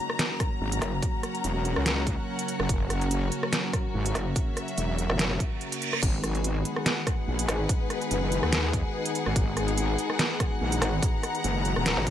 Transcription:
0.00 5.99 C#3 medium
0.00 5.99 F#3 medium
0.00 5.99 A#3 medium
0.00 7.36 C#4 medium
0.00 1.01 D#4 medium
0.00 5.99 F#4 medium
0.00 6.69 F#4 medium
0.00 5.99 A#4 medium
0.00 6.03 A#5 medium
0.10 cross-stick medium
0.19 snare loud
0.19 closed hi-hat medium
0.40 kick loud
0.40 cross-stick medium
0.40 closed hi-hat soft
0.61 0.80 G#1 loud
0.72 closed hi-hat medium
0.82 1.01 F#1 loud
0.82 cross-stick medium
0.82 closed hi-hat medium
1.02 kick loud
1.02 closed hi-hat medium
1.16 4.12 F#5 medium
1.23 cross-stick medium
1.23 closed hi-hat soft
1.35 closed hi-hat soft
1.44 1.75 E1 loud
1.44 closed hi-hat medium
1.65 closed hi-hat medium
1.76 2.16 C#2 medium
1.76 cross-stick medium
1.86 snare loud
1.86 closed hi-hat medium
2.07 kick loud
2.07 closed hi-hat soft
2.39 closed hi-hat medium
2.48 closed hi-hat medium
2.60 2.68 F#1 loud
2.60 cross-stick medium
2.69 3.30 F#1 loud
2.69 kick loud
2.69 closed hi-hat medium
2.90 cross-stick medium
2.90 closed hi-hat soft
3.01 closed hi-hat soft
3.11 closed hi-hat medium
3.32 closed hi-hat medium
3.43 cross-stick medium
3.53 snare loud
3.53 closed hi-hat medium
3.73 kick loud
3.73 cross-stick medium
3.73 closed hi-hat soft
3.94 4.14 G#1 loud
3.99 6.03 E5 medium
4.06 closed hi-hat medium
4.15 4.34 F#1 loud
4.15 cross-stick medium
4.15 closed hi-hat medium
4.36 kick loud
4.36 closed hi-hat medium
4.57 cross-stick medium
4.57 closed hi-hat medium
4.68 closed hi-hat soft
4.78 5.08 E1 medium
4.78 closed hi-hat medium
4.98 closed hi-hat medium
5.10 5.39 F#1 medium
5.10 cross-stick medium
5.19 snare loud
5.19 closed hi-hat medium
5.19 reverse cymbal medium
5.40 kick loud
5.40 closed hi-hat medium
5.61 closed hi-hat soft
5.72 closed hi-hat medium
5.82 closed hi-hat medium
5.93 cross-stick medium
6.03 6.64 G#1 loud
6.03 12.10 D#3 medium
6.03 12.10 G#3 medium
6.03 12.10 B3 medium
6.03 12.10 D#4 medium
6.03 12.10 F#4 medium
6.03 12.10 B4 medium
6.03 kick loud
6.03 closed hi-hat medium
6.03 crash medium
6.22 12.10 G#4 medium
6.22 cross-stick medium
6.22 closed hi-hat medium
6.35 closed hi-hat soft
6.44 closed hi-hat medium
6.62 10.15 B4 medium
6.62 closed hi-hat medium
6.69 12.10 F#5 medium
6.76 cross-stick medium
6.86 snare loud
6.86 closed hi-hat medium
7.07 kick loud
7.07 cross-stick medium
7.07 closed hi-hat medium
7.28 7.47 A#1 loud
7.39 closed hi-hat medium
7.48 7.68 G#1 loud
7.48 cross-stick medium
7.48 closed hi-hat medium
7.69 kick loud
7.69 closed hi-hat medium
7.90 cross-stick soft
7.90 closed hi-hat medium
8.01 closed hi-hat soft
8.11 8.41 F#1 loud
8.11 closed hi-hat medium
8.32 closed hi-hat medium
8.43 8.83 D#2 medium
8.43 cross-stick medium
8.53 snare loud
8.53 closed hi-hat medium
8.73 kick loud
8.73 closed hi-hat medium
9.06 closed hi-hat medium
9.15 closed hi-hat medium
9.26 9.34 G#1 loud
9.26 cross-stick medium
9.36 9.97 G#1 medium
9.36 kick loud
9.36 closed hi-hat medium
9.57 cross-stick soft
9.57 closed hi-hat medium
9.68 closed hi-hat soft
9.78 closed hi-hat medium
9.98 12.10 A#5 medium
9.98 closed hi-hat medium
10.10 cross-stick medium
10.19 snare loud
10.19 closed hi-hat medium
10.40 kick loud
10.40 cross-stick medium
10.40 closed hi-hat medium
10.61 10.80 A#1 medium
10.72 closed hi-hat medium
10.82 11.01 G#1 medium
10.82 cross-stick medium
10.82 closed hi-hat medium
11.03 kick loud
11.03 closed hi-hat medium
11.23 cross-stick soft
11.23 closed hi-hat medium
11.35 closed hi-hat soft
11.44 11.75 F#1 loud
11.44 closed hi-hat medium
11.65 closed hi-hat medium
11.76 11.95 D#1 medium
11.76 cross-stick medium
11.86 snare loud
11.86 closed hi-hat medium
11.97 12.10 G#1 loud
12.07 kick loud
12.07 closed hi-hat soft

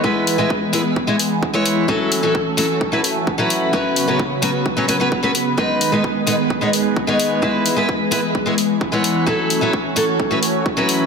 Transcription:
0.00 0.36 G#3 medium
0.00 1.85 B4 medium
0.04 3.70 E3 medium
0.04 1.87 G#3 medium
0.04 1.87 B3 medium
0.04 0.36 B3 medium
0.04 0.36 E4 medium
0.04 1.87 G#4 medium
0.04 0.36 B4 medium
0.04 kick loud
0.27 open hi-hat loud
0.38 0.50 G#3 medium
0.38 0.50 B3 medium
0.38 0.50 E4 medium
0.38 0.50 B4 medium
0.50 kick loud
0.73 0.80 G#3 medium
0.73 0.80 B3 medium
0.73 0.81 E4 medium
0.73 0.81 B4 medium
0.73 open hi-hat loud
0.96 kick loud
1.07 1.15 G#3 medium
1.07 1.15 B3 medium
1.07 1.15 E4 medium
1.07 1.15 C#5 medium
1.19 open hi-hat loud
1.43 kick loud
1.53 1.86 G#3 medium
1.53 1.86 B3 medium
1.53 1.86 E4 medium
1.53 1.86 C#5 medium
1.66 open hi-hat medium
1.88 2.20 F#3 medium
1.88 3.71 A3 medium
1.88 2.21 C#4 medium
1.88 3.72 C#4 medium
1.88 2.21 E4 medium
1.88 5.54 F#4 medium
1.88 3.72 A4 medium
1.88 2.21 A4 medium
1.88 kick loud
2.12 open hi-hat loud
2.23 2.34 F#3 medium
2.23 2.34 C#4 medium
2.23 2.35 E4 medium
2.23 2.35 A4 medium
2.35 kick loud
2.57 2.65 F#3 medium
2.57 2.65 C#4 medium
2.57 2.65 E4 medium
2.57 2.65 A4 loud
2.57 open hi-hat loud
2.81 kick loud
2.92 2.99 F#3 medium
2.92 3.00 C#4 medium
2.92 3.00 E4 medium
2.92 3.00 B4 medium
3.04 open hi-hat loud
3.27 kick loud
3.38 3.70 F#3 medium
3.38 3.71 C#4 medium
3.38 3.71 E4 medium
3.38 3.71 B4 medium
3.50 open hi-hat medium
3.73 5.56 C#3 medium
3.73 4.05 F#3 medium
3.73 5.56 F#3 medium
3.73 9.23 B3 medium
3.73 4.05 B3 medium
3.73 4.05 C#4 medium
3.73 9.23 B4 medium
3.73 4.06 B4 medium
3.73 kick loud
3.96 open hi-hat loud
4.08 4.19 F#3 medium
4.08 4.19 B3 medium
4.08 4.19 C#4 medium
4.08 4.20 B4 medium
4.19 kick loud
4.42 4.49 F#3 medium
4.42 4.50 B3 medium
4.42 4.50 C#4 medium
4.42 4.50 B4 loud
4.42 open hi-hat loud
4.66 kick loud
4.77 4.84 F#3 medium
4.77 4.84 B3 medium
4.77 4.84 C#4 medium
4.77 4.85 C#5 medium
4.88 4.95 F#3 medium
4.88 4.96 B3 medium
4.88 4.96 C#4 medium
4.88 4.96 B4 medium
4.88 open hi-hat medium
5.00 5.07 F#3 medium
5.00 5.07 B3 medium
5.00 5.07 C#4 medium
5.00 5.08 B4 medium
5.12 kick loud
5.23 5.30 F#3 medium
5.23 5.30 B3 medium
5.23 5.30 C#4 medium
5.23 5.31 B4 medium
5.35 open hi-hat medium
5.57 7.41 D#3 medium
5.57 5.90 G#3 medium
5.57 7.41 G#3 medium
5.57 5.90 B3 medium
5.57 5.90 D#4 medium
5.57 9.23 G#4 medium
5.57 5.90 B4 medium
5.57 kick loud
5.81 open hi-hat loud
5.92 6.04 G#3 medium
5.92 6.04 B3 medium
5.92 6.04 D#4 medium
5.92 6.04 B4 medium
6.04 kick loud
6.27 6.34 G#3 medium
6.27 6.34 B3 medium
6.27 6.34 D#4 medium
6.27 6.35 B4 medium
6.27 open hi-hat medium
6.50 kick loud
6.61 6.69 G#3 medium
6.61 6.69 B3 medium
6.61 6.69 D#4 medium
6.61 6.69 C#5 medium
6.73 open hi-hat medium
6.96 kick loud
7.07 7.40 G#3 medium
7.07 7.40 B3 medium
7.07 7.40 D#4 medium
7.07 7.40 C#5 medium
7.20 open hi-hat loud
7.42 11.06 E3 medium
7.42 7.74 G#3 medium
7.42 9.25 G#3 medium
7.42 7.74 B3 medium
7.42 7.75 E4 medium
7.42 7.75 B4 medium
7.42 kick loud
7.66 open hi-hat medium
7.76 7.88 G#3 medium
7.76 7.88 B3 medium
7.76 7.89 E4 medium
7.76 7.89 B4 medium
7.89 kick loud
8.11 8.19 G#3 medium
8.11 8.19 B3 medium
8.11 8.19 E4 medium
8.11 8.19 B4 loud
8.11 open hi-hat medium
8.35 kick loud
8.46 8.53 G#3 medium
8.46 8.53 B3 medium
8.46 8.54 E4 medium
8.46 8.54 C#5 medium
8.58 open hi-hat medium
8.81 kick loud
8.92 9.24 G#3 medium
8.92 9.24 B3 medium
8.92 9.25 E4 medium
8.92 9.25 C#5 medium
9.04 open hi-hat medium
9.26 9.59 F#3 medium
9.26 11.06 A3 medium
9.26 11.06 C#4 medium
9.26 9.59 C#4 medium
9.26 9.59 E4 medium
9.26 11.06 F#4 medium
9.26 9.59 A4 medium
9.26 11.06 C#5 medium
9.26 kick loud
9.50 open hi-hat medium
9.61 9.73 F#3 medium
9.61 9.73 C#4 medium
9.61 9.73 E4 medium
9.61 9.73 A4 medium
9.73 kick loud
9.96 10.03 F#3 medium
9.96 10.03 C#4 medium
9.96 10.04 E4 medium
9.96 10.04 A4 loud
9.96 open hi-hat medium
10.20 kick loud
10.31 10.38 F#3 medium
10.31 10.38 C#4 medium
10.31 10.38 E4 medium
10.31 10.39 B4 medium
10.43 open hi-hat medium
10.66 kick loud
10.77 11.06 F#3 medium
10.77 11.06 C#4 medium
10.77 11.06 E4 medium
10.77 11.06 B4 medium
10.89 open hi-hat medium

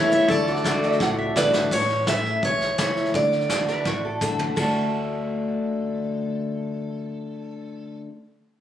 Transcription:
0.00 0.16 E1 medium
0.00 0.25 E2 medium
0.00 0.27 E3 medium
0.00 0.27 A3 medium
0.00 0.27 C#4 loud
0.00 0.27 E4 medium
0.00 0.28 E4 loud
0.00 0.10 A4 medium
0.00 0.28 A4 medium
0.00 0.11 C#5 medium
0.00 0.28 C#5 medium
0.11 0.28 C#5 medium
0.11 0.31 E5 medium
0.11 snare soft
0.19 snare soft
0.28 0.58 D2 loud
0.28 0.63 D3 medium
0.28 0.53 E4 medium
0.28 1.70 A4 medium
0.28 1.32 A4 medium
0.28 0.50 C#5 medium
0.28 1.37 D5 loud
0.28 kick loud
0.28 snare soft
0.47 1.71 D5 medium
0.47 snare soft
0.53 1.70 F#4 medium
0.53 snare soft
0.64 0.95 D2 medium
0.64 0.98 D3 medium
0.64 0.99 A3 medium
0.64 0.99 D4 loud
0.64 0.99 F#4 loud
0.64 kick medium
0.64 snare loud
0.64 hi-hat pedal medium
0.83 1.01 E5 medium
0.83 snare soft
0.92 snare soft
1.00 1.31 C#2 medium
1.00 1.68 A2 medium
1.00 1.18 F#5 medium
1.00 kick loud
1.00 snare medium
1.18 1.36 E5 medium
1.36 1.66 B1 medium
1.36 1.70 D3 medium
1.36 1.70 A3 medium
1.36 1.71 D4 loud
1.36 1.71 F#4 medium
1.36 1.73 B4 medium
1.36 1.54 D5 loud
1.36 kick medium
1.36 snare medium
1.36 hi-hat pedal medium
1.53 snare medium
1.71 2.30 A1 medium
1.71 2.40 A2 medium
1.71 2.05 C#5 loud
1.71 kick loud
1.71 snare soft
1.71 crash medium
1.80 snare soft
1.90 snare soft
2.07 2.41 E3 medium
2.07 2.42 A3 medium
2.07 2.42 C#4 medium
2.07 2.42 E4 medium
2.07 2.44 E5 loud
2.07 kick medium
2.07 snare medium
2.07 hi-hat pedal medium
2.25 snare soft
2.43 2.73 B1 medium
2.43 3.11 E2 medium
2.43 2.77 C#5 medium
2.43 kick loud
2.43 snare soft
2.61 snare soft
2.78 3.09 C#2 medium
2.78 3.12 E3 medium
2.78 3.13 A3 medium
2.78 3.13 C#4 medium
2.78 3.13 E4 medium
2.78 3.15 C#5 medium
2.78 kick medium
2.78 snare loud
2.78 hi-hat pedal medium
2.96 snare soft
3.05 snare soft
3.14 3.73 D2 medium
3.14 3.49 D3 medium
3.14 4.18 D5 loud
3.14 kick loud
3.14 snare soft
3.32 snare soft
3.40 snare soft
3.49 3.84 D3 medium
3.49 3.85 A3 medium
3.49 3.85 D4 medium
3.49 3.85 F#4 medium
3.49 kick medium
3.49 snare loud
3.49 hi-hat pedal medium
3.68 3.86 B4 loud
3.68 snare soft
3.85 4.44 A1 medium
3.85 4.54 A2 medium
3.85 4.04 F#4 medium
3.85 kick loud
3.85 snare medium
4.05 4.21 A4 medium
4.21 4.55 D3 medium
4.21 4.56 A3 medium
4.21 4.56 D4 medium
4.21 4.56 F#4 medium
4.21 4.39 A4 medium
4.21 kick medium
4.21 hi-hat pedal medium
4.21 mid tom medium
4.39 floor tom medium
4.56 7.97 D2 medium
4.56 8.06 D3 medium
4.56 8.08 A3 medium
4.56 8.09 D4 medium
4.56 8.10 F#4 medium
4.56 7.97 A4 medium
4.56 kick medium
4.56 crash medium

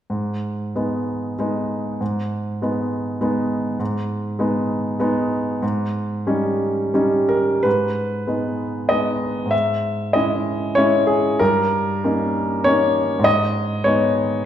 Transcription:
0.10 0.72 G#2 soft
0.76 1.35 G#3 soft
0.76 1.35 B3 soft
0.76 1.35 D#4 soft
1.39 1.97 G#3 soft
1.39 1.97 B3 soft
1.39 1.97 D#4 soft
2.01 2.60 G#2 soft
2.62 3.18 G#3 soft
2.62 3.18 B3 soft
2.62 3.18 D#4 soft
3.21 3.76 G#3 soft
3.21 3.76 B3 soft
3.21 3.77 D#4 soft
3.79 4.37 G#2 medium
4.39 4.96 G#3 soft
4.39 4.96 B3 soft
4.39 4.96 D#4 soft
5.00 5.58 G#3 soft
5.00 5.59 B3 soft
5.00 5.59 D#4 medium
5.62 6.25 G#2 medium
6.27 6.90 G3 soft
6.27 6.90 C#4 soft
6.27 6.91 D#4 soft
6.94 7.61 G3 soft
6.94 7.62 C#4 soft
6.94 7.62 D#4 soft
7.29 7.64 A#4 medium
7.63 8.25 G#2 soft
7.63 8.89 B4 medium
8.27 8.86 G#3 soft
8.27 8.86 B3 soft
8.27 8.87 D#4 soft
8.89 9.48 G#3 soft
8.89 9.48 B3 soft
8.89 9.49 D#4 soft
8.89 9.52 D#5 medium
9.46 10.09 G#2 soft
9.51 10.14 E5 medium
10.13 10.73 G#3 soft
10.13 10.73 C#4 soft
10.13 10.73 E4 soft
10.13 10.76 D#5 medium
10.75 11.36 G#3 soft
10.75 11.37 C#4 soft
10.75 11.37 E4 soft
10.75 11.08 C#5 medium
11.07 11.39 G#4 medium
11.39 12.03 G2 medium
11.39 12.66 A#4 medium
12.04 12.62 A#3 soft
12.04 12.62 C#4 soft
12.04 12.62 D#4 soft
12.64 13.21 A#3 soft
12.64 13.22 C#4 soft
12.64 13.22 D#4 soft
12.64 13.25 C#5 medium
13.19 13.81 G#2 medium
13.24 13.85 D#5 medium
13.84 14.42 G#3 soft
13.84 14.42 B3 soft
13.84 14.42 D#4 soft
13.84 14.45 C#5 medium

